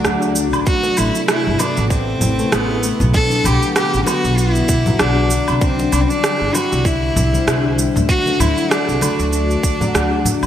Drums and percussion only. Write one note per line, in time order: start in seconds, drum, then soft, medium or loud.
0.05 cross-stick medium
0.05 cabasa soft
0.22 cabasa soft
0.36 cabasa medium
0.53 cabasa soft
0.53 low woodblock medium
0.66 kick loud
0.66 cabasa soft
0.83 high bongo medium
0.83 cabasa soft
0.97 cabasa medium
0.97 low woodblock medium
1.15 high bongo soft
1.15 cabasa soft
1.28 cross-stick loud
1.28 cabasa soft
1.59 high bongo medium
1.59 cabasa medium
1.59 low woodblock medium
1.77 cabasa soft
1.90 kick loud
1.90 cabasa soft
2.21 low conga loud
2.21 cabasa medium
2.39 cabasa soft
2.52 cross-stick loud
2.52 cabasa soft
2.83 cabasa medium
3.00 low conga loud
3.00 cabasa soft
3.14 kick loud
3.14 cabasa soft
3.31 high bongo medium
3.31 cabasa soft
3.44 low conga medium
3.44 cabasa medium
3.44 low woodblock medium
3.63 cabasa soft
3.76 cross-stick loud
3.76 cabasa soft
3.94 cabasa soft
4.07 cross-stick soft
4.07 high bongo medium
4.07 cabasa medium
4.07 low woodblock medium
4.25 cabasa soft
4.38 cabasa soft
4.55 cabasa soft
4.69 kick loud
4.69 cabasa medium
4.86 low conga loud
4.86 cabasa soft
4.99 cross-stick loud
4.99 cabasa soft
5.30 cabasa medium
5.48 cabasa soft
5.48 low woodblock medium
5.61 kick loud
5.61 cabasa soft
5.79 high bongo medium
5.79 cabasa soft
5.93 cabasa medium
5.93 low woodblock medium
6.10 high bongo soft
6.10 cabasa soft
6.24 cross-stick loud
6.24 cabasa soft
6.55 high bongo medium
6.55 cabasa medium
6.55 low woodblock medium
6.72 cabasa soft
6.85 kick loud
6.85 cabasa medium
7.16 low conga loud
7.16 cabasa medium
7.34 cabasa soft
7.48 cross-stick loud
7.48 cabasa soft
7.79 cabasa medium
7.96 low conga loud
7.96 cabasa soft
8.09 kick loud
8.09 cabasa soft
8.26 high bongo soft
8.26 high conga soft
8.26 cabasa soft
8.40 low conga medium
8.40 cabasa medium
8.40 low woodblock medium
8.58 cabasa soft
8.71 cross-stick loud
8.71 cabasa soft
8.89 cabasa soft
9.01 cross-stick soft
9.01 high bongo medium
9.01 high conga medium
9.01 cabasa medium
9.01 low woodblock medium
9.19 cabasa soft
9.33 cabasa medium
9.51 cabasa soft
9.63 kick loud
9.63 cabasa medium
9.81 low conga medium
9.81 cabasa soft
9.95 cross-stick loud
9.95 cabasa soft
10.25 low conga medium
10.25 cabasa medium
10.43 cabasa soft
10.43 low woodblock medium